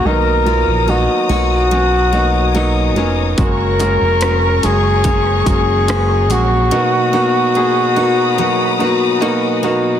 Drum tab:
HH |----------------|x-x-x-x-x-x-x-x-|----------------|
SD |----------------|----r----r--r---|----------------|
BD |----------------|o-------o-o-----|----------------|